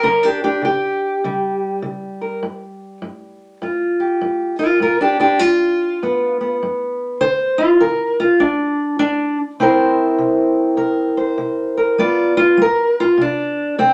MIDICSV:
0, 0, Header, 1, 2, 480
1, 0, Start_track
1, 0, Tempo, 598205
1, 17, Time_signature, 4, 2, 24, 8
1, 11181, End_track
2, 0, Start_track
2, 0, Title_t, "Steel-string acoustic guitar"
2, 0, Program_c, 0, 25
2, 26, Note_on_c, 0, 61, 79
2, 29, Note_on_c, 0, 49, 75
2, 32, Note_on_c, 0, 70, 90
2, 183, Note_off_c, 0, 70, 0
2, 184, Note_off_c, 0, 61, 0
2, 184, Note_on_c, 0, 62, 81
2, 201, Note_on_c, 0, 67, 91
2, 339, Note_off_c, 0, 62, 0
2, 342, Note_off_c, 0, 67, 0
2, 352, Note_on_c, 0, 67, 86
2, 356, Note_on_c, 0, 62, 69
2, 466, Note_off_c, 0, 49, 0
2, 497, Note_on_c, 0, 49, 70
2, 503, Note_off_c, 0, 67, 0
2, 505, Note_off_c, 0, 62, 0
2, 520, Note_on_c, 0, 67, 97
2, 939, Note_off_c, 0, 49, 0
2, 997, Note_on_c, 0, 49, 74
2, 1001, Note_on_c, 0, 55, 49
2, 1429, Note_off_c, 0, 49, 0
2, 1463, Note_on_c, 0, 49, 69
2, 1465, Note_off_c, 0, 67, 0
2, 1777, Note_on_c, 0, 70, 46
2, 1902, Note_off_c, 0, 49, 0
2, 1922, Note_off_c, 0, 70, 0
2, 1946, Note_on_c, 0, 43, 76
2, 2384, Note_off_c, 0, 43, 0
2, 2422, Note_on_c, 0, 43, 72
2, 2862, Note_off_c, 0, 43, 0
2, 2902, Note_on_c, 0, 43, 73
2, 2911, Note_on_c, 0, 65, 49
2, 2935, Note_off_c, 0, 55, 0
2, 3209, Note_on_c, 0, 67, 46
2, 3342, Note_off_c, 0, 43, 0
2, 3381, Note_on_c, 0, 43, 78
2, 3673, Note_off_c, 0, 65, 0
2, 3682, Note_on_c, 0, 65, 88
2, 3688, Note_off_c, 0, 67, 0
2, 3688, Note_on_c, 0, 70, 108
2, 3822, Note_off_c, 0, 43, 0
2, 3848, Note_off_c, 0, 65, 0
2, 3851, Note_off_c, 0, 70, 0
2, 3851, Note_on_c, 0, 43, 73
2, 3868, Note_on_c, 0, 65, 71
2, 3872, Note_on_c, 0, 70, 84
2, 4014, Note_off_c, 0, 65, 0
2, 4017, Note_on_c, 0, 62, 81
2, 4023, Note_off_c, 0, 70, 0
2, 4026, Note_on_c, 0, 67, 90
2, 4161, Note_off_c, 0, 62, 0
2, 4167, Note_off_c, 0, 67, 0
2, 4170, Note_on_c, 0, 62, 78
2, 4176, Note_on_c, 0, 67, 91
2, 4298, Note_off_c, 0, 43, 0
2, 4327, Note_off_c, 0, 62, 0
2, 4327, Note_on_c, 0, 65, 101
2, 4330, Note_on_c, 0, 43, 66
2, 4336, Note_off_c, 0, 67, 0
2, 4778, Note_off_c, 0, 43, 0
2, 4835, Note_on_c, 0, 43, 71
2, 4839, Note_on_c, 0, 59, 48
2, 5130, Note_off_c, 0, 59, 0
2, 5141, Note_on_c, 0, 59, 45
2, 5271, Note_off_c, 0, 43, 0
2, 5293, Note_off_c, 0, 65, 0
2, 5317, Note_on_c, 0, 43, 69
2, 5753, Note_off_c, 0, 43, 0
2, 5768, Note_off_c, 0, 59, 0
2, 5782, Note_on_c, 0, 50, 71
2, 5783, Note_on_c, 0, 72, 102
2, 6083, Note_on_c, 0, 65, 99
2, 6084, Note_off_c, 0, 72, 0
2, 6226, Note_off_c, 0, 50, 0
2, 6260, Note_off_c, 0, 65, 0
2, 6263, Note_on_c, 0, 70, 88
2, 6271, Note_on_c, 0, 50, 69
2, 6564, Note_off_c, 0, 70, 0
2, 6578, Note_on_c, 0, 65, 91
2, 6711, Note_off_c, 0, 50, 0
2, 6740, Note_on_c, 0, 62, 85
2, 6748, Note_off_c, 0, 65, 0
2, 7205, Note_off_c, 0, 62, 0
2, 7215, Note_on_c, 0, 62, 108
2, 7521, Note_off_c, 0, 62, 0
2, 7701, Note_on_c, 0, 48, 77
2, 7702, Note_on_c, 0, 60, 65
2, 7709, Note_on_c, 0, 64, 62
2, 7717, Note_on_c, 0, 70, 68
2, 7723, Note_on_c, 0, 72, 70
2, 8146, Note_off_c, 0, 48, 0
2, 8172, Note_on_c, 0, 48, 69
2, 8621, Note_off_c, 0, 48, 0
2, 8635, Note_off_c, 0, 70, 0
2, 8641, Note_on_c, 0, 48, 67
2, 8645, Note_on_c, 0, 70, 59
2, 8956, Note_off_c, 0, 72, 0
2, 8966, Note_on_c, 0, 72, 59
2, 9096, Note_off_c, 0, 48, 0
2, 9129, Note_on_c, 0, 48, 75
2, 9436, Note_off_c, 0, 70, 0
2, 9448, Note_on_c, 0, 70, 60
2, 9579, Note_off_c, 0, 48, 0
2, 9600, Note_off_c, 0, 60, 0
2, 9601, Note_off_c, 0, 72, 0
2, 9602, Note_off_c, 0, 70, 0
2, 9603, Note_off_c, 0, 64, 0
2, 9615, Note_on_c, 0, 55, 76
2, 9621, Note_on_c, 0, 59, 55
2, 9624, Note_on_c, 0, 74, 104
2, 9627, Note_on_c, 0, 65, 56
2, 9916, Note_off_c, 0, 65, 0
2, 9923, Note_off_c, 0, 74, 0
2, 9926, Note_on_c, 0, 65, 100
2, 10063, Note_off_c, 0, 55, 0
2, 10088, Note_on_c, 0, 55, 75
2, 10102, Note_off_c, 0, 65, 0
2, 10123, Note_on_c, 0, 70, 95
2, 10414, Note_off_c, 0, 70, 0
2, 10432, Note_on_c, 0, 65, 100
2, 10538, Note_off_c, 0, 55, 0
2, 10558, Note_off_c, 0, 59, 0
2, 10572, Note_on_c, 0, 48, 72
2, 10594, Note_off_c, 0, 65, 0
2, 10603, Note_on_c, 0, 62, 88
2, 11019, Note_off_c, 0, 48, 0
2, 11060, Note_on_c, 0, 48, 74
2, 11061, Note_off_c, 0, 62, 0
2, 11064, Note_on_c, 0, 60, 107
2, 11181, Note_off_c, 0, 48, 0
2, 11181, Note_off_c, 0, 60, 0
2, 11181, End_track
0, 0, End_of_file